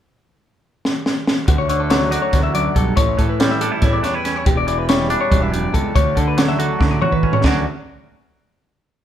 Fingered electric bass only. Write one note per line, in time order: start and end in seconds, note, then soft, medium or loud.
1.48 2.16 D2 medium
2.34 2.67 D2 medium
2.76 2.93 B1 medium
2.97 3.14 A1 medium
3.19 3.70 A2 medium
3.82 3.99 A2 medium
4.46 5.14 E1 medium
5.32 5.66 E1 medium
5.75 5.91 C#2 medium
5.96 6.13 D2 loud
6.17 6.68 D3 medium
6.81 6.98 D3 medium
7.44 7.64 D2 medium